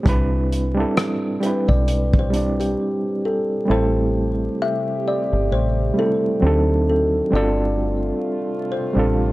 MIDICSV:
0, 0, Header, 1, 6, 480
1, 0, Start_track
1, 0, Key_signature, 0, "minor"
1, 0, Tempo, 909091
1, 30, Time_signature, 4, 2, 24, 8
1, 4923, End_track
2, 0, Start_track
2, 0, Title_t, "Kalimba"
2, 0, Program_c, 0, 108
2, 754, Note_on_c, 0, 71, 97
2, 889, Note_on_c, 0, 74, 87
2, 895, Note_off_c, 0, 71, 0
2, 1131, Note_off_c, 0, 74, 0
2, 1156, Note_on_c, 0, 72, 86
2, 1302, Note_off_c, 0, 72, 0
2, 1372, Note_on_c, 0, 67, 80
2, 1690, Note_off_c, 0, 67, 0
2, 1717, Note_on_c, 0, 69, 74
2, 1959, Note_on_c, 0, 72, 97
2, 1961, Note_off_c, 0, 69, 0
2, 2439, Note_on_c, 0, 76, 107
2, 2449, Note_off_c, 0, 72, 0
2, 2680, Note_on_c, 0, 74, 98
2, 2682, Note_off_c, 0, 76, 0
2, 2916, Note_on_c, 0, 72, 107
2, 2922, Note_off_c, 0, 74, 0
2, 3160, Note_off_c, 0, 72, 0
2, 3162, Note_on_c, 0, 69, 83
2, 3615, Note_off_c, 0, 69, 0
2, 3641, Note_on_c, 0, 69, 73
2, 3859, Note_off_c, 0, 69, 0
2, 3883, Note_on_c, 0, 74, 99
2, 4575, Note_off_c, 0, 74, 0
2, 4603, Note_on_c, 0, 72, 85
2, 4923, Note_off_c, 0, 72, 0
2, 4923, End_track
3, 0, Start_track
3, 0, Title_t, "Reed electric piano"
3, 0, Program_c, 1, 4
3, 0, Control_c, 1, 64, 127
3, 17, Note_on_c, 1, 55, 91
3, 25, Note_on_c, 1, 60, 82
3, 31, Note_on_c, 1, 62, 88
3, 37, Control_c, 1, 64, 0
3, 39, Note_on_c, 1, 64, 81
3, 46, Note_on_c, 1, 71, 111
3, 133, Control_c, 1, 64, 127
3, 339, Note_off_c, 1, 55, 0
3, 343, Note_off_c, 1, 60, 0
3, 346, Note_off_c, 1, 62, 0
3, 350, Note_off_c, 1, 64, 0
3, 354, Note_off_c, 1, 71, 0
3, 394, Note_on_c, 1, 55, 75
3, 404, Note_on_c, 1, 60, 70
3, 409, Note_on_c, 1, 62, 76
3, 419, Note_on_c, 1, 64, 75
3, 424, Note_on_c, 1, 69, 88
3, 696, Note_off_c, 1, 55, 0
3, 701, Note_off_c, 1, 60, 0
3, 704, Note_off_c, 1, 62, 0
3, 709, Note_off_c, 1, 64, 0
3, 711, Note_off_c, 1, 69, 0
3, 742, Note_on_c, 1, 55, 66
3, 750, Note_on_c, 1, 60, 56
3, 757, Note_on_c, 1, 62, 52
3, 765, Note_on_c, 1, 64, 59
3, 774, Note_on_c, 1, 71, 67
3, 1165, Note_off_c, 1, 55, 0
3, 1168, Note_off_c, 1, 60, 0
3, 1172, Note_off_c, 1, 62, 0
3, 1176, Note_off_c, 1, 64, 0
3, 1180, Note_off_c, 1, 71, 0
3, 1216, Note_on_c, 1, 55, 75
3, 1223, Note_on_c, 1, 60, 59
3, 1231, Note_on_c, 1, 62, 67
3, 1238, Note_on_c, 1, 64, 53
3, 1247, Note_on_c, 1, 74, 73
3, 1851, Note_off_c, 1, 55, 0
3, 1854, Note_off_c, 1, 60, 0
3, 1858, Note_off_c, 1, 62, 0
3, 1862, Note_off_c, 1, 64, 0
3, 1866, Note_off_c, 1, 74, 0
3, 1930, Note_on_c, 1, 55, 71
3, 1936, Note_on_c, 1, 57, 66
3, 1942, Note_on_c, 1, 60, 77
3, 1951, Note_on_c, 1, 64, 80
3, 1956, Control_c, 1, 64, 0
3, 1959, Note_on_c, 1, 69, 91
3, 2041, Control_c, 1, 64, 127
3, 2768, Note_off_c, 1, 55, 0
3, 2771, Note_off_c, 1, 57, 0
3, 2775, Note_off_c, 1, 60, 0
3, 2779, Note_off_c, 1, 64, 0
3, 2783, Note_off_c, 1, 69, 0
3, 3137, Note_on_c, 1, 55, 76
3, 3145, Note_on_c, 1, 57, 57
3, 3154, Note_on_c, 1, 60, 68
3, 3160, Note_on_c, 1, 64, 65
3, 3166, Note_on_c, 1, 69, 70
3, 3382, Note_on_c, 1, 54, 79
3, 3384, Note_off_c, 1, 55, 0
3, 3384, Note_off_c, 1, 60, 0
3, 3387, Note_off_c, 1, 57, 0
3, 3391, Note_on_c, 1, 60, 79
3, 3395, Note_off_c, 1, 64, 0
3, 3396, Control_c, 1, 64, 0
3, 3398, Note_off_c, 1, 69, 0
3, 3398, Note_on_c, 1, 62, 72
3, 3407, Note_on_c, 1, 63, 77
3, 3413, Note_on_c, 1, 69, 90
3, 3487, Control_c, 1, 64, 127
3, 3804, Note_off_c, 1, 54, 0
3, 3809, Note_off_c, 1, 60, 0
3, 3812, Note_off_c, 1, 62, 0
3, 3817, Note_off_c, 1, 63, 0
3, 3820, Note_off_c, 1, 69, 0
3, 3856, Note_on_c, 1, 55, 66
3, 3864, Note_on_c, 1, 60, 68
3, 3873, Note_on_c, 1, 62, 81
3, 3876, Control_c, 1, 64, 0
3, 3881, Note_on_c, 1, 65, 84
3, 3888, Note_on_c, 1, 69, 99
3, 3977, Control_c, 1, 64, 127
3, 4576, Note_off_c, 1, 55, 0
3, 4580, Note_off_c, 1, 60, 0
3, 4584, Note_off_c, 1, 62, 0
3, 4589, Note_off_c, 1, 65, 0
3, 4592, Note_off_c, 1, 69, 0
3, 4717, Note_on_c, 1, 55, 80
3, 4725, Note_on_c, 1, 60, 72
3, 4733, Note_on_c, 1, 62, 75
3, 4741, Note_on_c, 1, 65, 84
3, 4749, Note_on_c, 1, 69, 91
3, 4923, Note_off_c, 1, 55, 0
3, 4923, Note_off_c, 1, 60, 0
3, 4923, Note_off_c, 1, 62, 0
3, 4923, Note_off_c, 1, 65, 0
3, 4923, Note_off_c, 1, 69, 0
3, 4923, End_track
4, 0, Start_track
4, 0, Title_t, "Ambient pad"
4, 0, Program_c, 2, 92
4, 1951, Note_on_c, 2, 67, 91
4, 1952, Note_on_c, 2, 48, 84
4, 1954, Note_on_c, 2, 57, 75
4, 3376, Note_off_c, 2, 67, 0
4, 3377, Note_off_c, 2, 48, 0
4, 3378, Note_off_c, 2, 57, 0
4, 3391, Note_on_c, 2, 51, 77
4, 3392, Note_on_c, 2, 60, 68
4, 3392, Note_on_c, 2, 66, 84
4, 3866, Note_off_c, 2, 51, 0
4, 3866, Note_off_c, 2, 60, 0
4, 3866, Note_off_c, 2, 66, 0
4, 3870, Note_on_c, 2, 57, 75
4, 3871, Note_on_c, 2, 48, 82
4, 3873, Note_on_c, 2, 65, 89
4, 4923, Note_off_c, 2, 48, 0
4, 4923, Note_off_c, 2, 57, 0
4, 4923, Note_off_c, 2, 65, 0
4, 4923, End_track
5, 0, Start_track
5, 0, Title_t, "Fingered electric bass"
5, 0, Program_c, 3, 33
5, 31, Note_on_c, 3, 36, 98
5, 442, Note_off_c, 3, 36, 0
5, 891, Note_on_c, 3, 35, 89
5, 1450, Note_off_c, 3, 35, 0
5, 1952, Note_on_c, 3, 33, 90
5, 2362, Note_off_c, 3, 33, 0
5, 2813, Note_on_c, 3, 31, 91
5, 2897, Note_off_c, 3, 31, 0
5, 2910, Note_on_c, 3, 33, 82
5, 3116, Note_off_c, 3, 33, 0
5, 3392, Note_on_c, 3, 38, 92
5, 3802, Note_off_c, 3, 38, 0
5, 3870, Note_on_c, 3, 31, 99
5, 4281, Note_off_c, 3, 31, 0
5, 4732, Note_on_c, 3, 33, 77
5, 4923, Note_off_c, 3, 33, 0
5, 4923, End_track
6, 0, Start_track
6, 0, Title_t, "Drums"
6, 30, Note_on_c, 9, 36, 118
6, 36, Note_on_c, 9, 42, 70
6, 83, Note_off_c, 9, 36, 0
6, 88, Note_off_c, 9, 42, 0
6, 277, Note_on_c, 9, 42, 62
6, 330, Note_off_c, 9, 42, 0
6, 513, Note_on_c, 9, 42, 75
6, 515, Note_on_c, 9, 37, 110
6, 565, Note_off_c, 9, 42, 0
6, 567, Note_off_c, 9, 37, 0
6, 754, Note_on_c, 9, 42, 53
6, 807, Note_off_c, 9, 42, 0
6, 891, Note_on_c, 9, 36, 69
6, 944, Note_off_c, 9, 36, 0
6, 992, Note_on_c, 9, 42, 81
6, 1045, Note_off_c, 9, 42, 0
6, 1127, Note_on_c, 9, 36, 97
6, 1180, Note_off_c, 9, 36, 0
6, 1234, Note_on_c, 9, 42, 67
6, 1286, Note_off_c, 9, 42, 0
6, 1376, Note_on_c, 9, 42, 50
6, 1429, Note_off_c, 9, 42, 0
6, 4923, End_track
0, 0, End_of_file